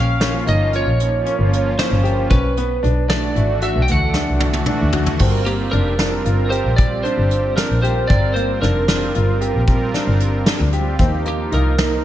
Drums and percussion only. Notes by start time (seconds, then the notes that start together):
0.21 snare, closed hi-hat
0.47 closed hi-hat
0.73 closed hi-hat
1.00 closed hi-hat
1.26 closed hi-hat
1.53 closed hi-hat
1.79 snare, closed hi-hat
2.05 closed hi-hat
2.30 kick, closed hi-hat
2.57 closed hi-hat
2.84 closed hi-hat
3.10 snare, closed hi-hat
3.36 closed hi-hat
3.61 closed hi-hat
3.88 closed hi-hat
4.14 snare
4.40 high tom
4.53 high tom
4.66 mid tom
4.93 floor tom
5.06 floor tom
5.19 kick, crash
5.46 closed hi-hat
5.73 closed hi-hat
5.99 snare, closed hi-hat
6.25 closed hi-hat
6.52 closed hi-hat
6.78 kick, closed hi-hat
7.05 closed hi-hat
7.31 closed hi-hat
7.57 snare, closed hi-hat
7.84 closed hi-hat
8.10 kick, closed hi-hat
8.36 closed hi-hat
8.63 snare, closed hi-hat
8.88 snare, closed hi-hat
9.15 closed hi-hat
9.41 closed hi-hat
9.67 kick, closed hi-hat
9.94 snare, closed hi-hat
10.20 closed hi-hat
10.46 snare, closed hi-hat
10.73 closed hi-hat
10.99 kick, closed hi-hat
11.26 closed hi-hat
11.52 closed hi-hat
11.78 snare, closed hi-hat